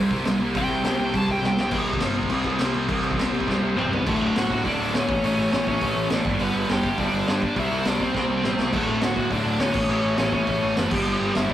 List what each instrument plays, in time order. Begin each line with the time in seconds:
Already playing: picked electric bass C2, distorted electric guitar C3 G3 C4 E4
0.00 distorted electric guitar G4 C5
0.11 kick
0.25 picked electric bass C2, overdriven electric guitar C3 G3, snare, open hi-hat
0.40 picked electric bass C2
0.55 picked electric bass C2, distorted electric guitar C3 G3 C4 E4 G4 C5, lead electric guitar G5, kick, open hi-hat
0.69 picked electric bass C2
0.84 picked electric bass C2, overdriven electric guitar C3 G3 C4, snare, open hi-hat
0.99 picked electric bass C2
1.13 picked electric bass C2, distorted electric guitar C3 G3 C4 E4 G4 C5, kick, open hi-hat
1.17 lead electric guitar A5
1.28 lead electric guitar G5, kick
1.42 picked electric bass C2, overdriven electric guitar C3 G3, snare
1.46 lead electric guitar G5
1.57 picked electric bass C2, snare
1.61 lead electric guitar G5
1.71 picked electric bass C2, distorted electric guitar C3 G3 C4, kick, crash
1.86 picked electric bass C2, crash
1.93 kick
2.00 picked electric bass G1, distorted electric guitar C3 G3 C4, snare, crash
2.15 crash
2.23 kick
2.30 picked electric bass C2, distorted electric guitar C3 G3 C4, kick, crash
2.44 picked electric bass C2, kick, crash
2.59 picked electric bass C2, distorted electric guitar C3 G3 C4, snare, crash
2.74 picked electric bass C2, crash
2.88 picked electric bass C2, distorted electric guitar C3 G3 C4, kick, crash
3.03 picked electric bass C2, crash
3.11 kick
3.18 picked electric bass C2, distorted electric guitar C3 G3 C4, snare, crash
3.33 picked electric bass C2, crash
3.40 kick
3.48 picked electric bass C2, distorted electric guitar C3 G3 C4, kick, snare
3.63 picked electric bass C2
3.77 picked electric bass E1, distorted electric guitar C3 G3 C4, lead electric guitar C4 C5, mid tom
3.92 picked electric bass C2, lead electric guitar B3 B4, floor tom
4.06 picked electric bass D1, distorted electric guitar D2 A2 D3, lead electric guitar A3 A4, kick, crash
4.20 picked electric bass D1
4.35 picked electric bass D1, distorted electric guitar D2 A2 D3, lead electric guitar F#4 F#5, snare, open hi-hat
4.49 picked electric bass D1, overdriven electric guitar D2 A2 D3, kick
4.64 picked electric bass D1, distorted electric guitar D2 A2 D3, lead electric guitar D4 D5, kick, open hi-hat
4.80 picked electric bass D1
4.94 picked electric bass D2, distorted electric guitar D2 A2 D3, lead electric guitar C#4 C#5, snare, open hi-hat
5.08 picked electric bass A1, overdriven electric guitar A2 E3 A3, kick
5.23 picked electric bass A1, distorted electric guitar A2 E3 A3, lead electric guitar C#4 C#5, open hi-hat
5.37 picked electric bass A1
5.52 picked electric bass A1, distorted electric guitar A2 E3 A3, lead electric guitar C#4 C#5, snare, open hi-hat
5.67 picked electric bass A1, distorted electric guitar A2 E3 A3, lead electric guitar C#4 C#5, kick
5.81 picked electric bass A1, distorted electric guitar A2 E3 A3, kick, open hi-hat
5.96 picked electric bass A1
6.10 picked electric bass A1, distorted electric guitar A2 E3 A3, lead electric guitar D5, snare, open hi-hat
6.14 lead electric guitar D4
6.24 picked electric bass G1, overdriven electric guitar G2 D3 G3, kick
6.39 picked electric bass G1, distorted electric guitar G2 D3 G3, lead electric guitar B3 B4, open hi-hat
6.54 picked electric bass G1
6.69 picked electric bass G1, distorted electric guitar G2 D3 G3, lead electric guitar G5, snare, open hi-hat
6.73 lead electric guitar G4
6.83 picked electric bass G1, distorted electric guitar D3 G3, kick
6.87 distorted electric guitar G2
6.98 picked electric bass G1, distorted electric guitar G2 D3 G3, lead electric guitar D4 D5, kick, open hi-hat
7.12 picked electric bass G1
7.28 picked electric bass G2, distorted electric guitar G2 D3 G3, lead electric guitar D4 D5, snare, open hi-hat
7.42 kick
7.56 picked electric bass C2, distorted electric guitar C3 G3 C4, lead electric guitar E5, kick, open hi-hat
7.60 lead electric guitar E4
7.71 picked electric bass C2
7.85 picked electric bass C2, distorted electric guitar C3 G3 C4, lead electric guitar D4 D5, snare, open hi-hat
8.00 picked electric bass C2, overdriven electric guitar C3 G3 C4, lead electric guitar C4 C5, kick
8.14 picked electric bass C2, distorted electric guitar C3 G3 C4, kick, snare
8.30 picked electric bass C2
8.43 picked electric bass A1, distorted electric guitar C3 G3 C4, lead electric guitar C4 C5, snare
8.59 picked electric bass C2, snare
8.73 picked electric bass D1, distorted electric guitar D2 A2 D3, lead electric guitar A3 A4, kick, crash
8.87 picked electric bass D1
9.01 picked electric bass D1, distorted electric guitar D2 A2 D3, lead electric guitar F#4 F#5, snare, open hi-hat
9.15 picked electric bass D1, overdriven electric guitar D2 A2 D3, kick
9.31 picked electric bass D1, distorted electric guitar D2 A2 D3, lead electric guitar D4 D5, kick, open hi-hat
9.44 picked electric bass D1
9.60 picked electric bass D2, distorted electric guitar D2 A2 D3, lead electric guitar C#4 C#5, snare, open hi-hat
9.73 picked electric bass A1, overdriven electric guitar A2 E3 A3, lead electric guitar C#4 C#5, kick, crash
9.89 picked electric bass A1, distorted electric guitar A2 E3 A3
10.04 picked electric bass A1
10.17 picked electric bass A1, distorted electric guitar A2 E3 A3, lead electric guitar C#4 C#5, snare, open hi-hat
10.31 picked electric bass A1, distorted electric guitar E3 A3, lead electric guitar C#4 C#5, kick
10.35 distorted electric guitar A2
10.46 picked electric bass A1, distorted electric guitar A2 E3 A3, kick, open hi-hat
10.63 picked electric bass A1
10.76 picked electric bass F#1, distorted electric guitar A2 E3 A3, lead electric guitar B3 B4, snare, open hi-hat
10.91 picked electric bass G1, overdriven electric guitar G2 D3 G3, lead electric guitar G3 G4, kick, crash
11.06 picked electric bass G1, distorted electric guitar G2 D3 G3
11.20 picked electric bass G1
11.35 picked electric bass G1, distorted electric guitar G2 D3 G3, lead electric guitar E4 E5, snare, open hi-hat
11.49 picked electric bass G1, distorted electric guitar G3, kick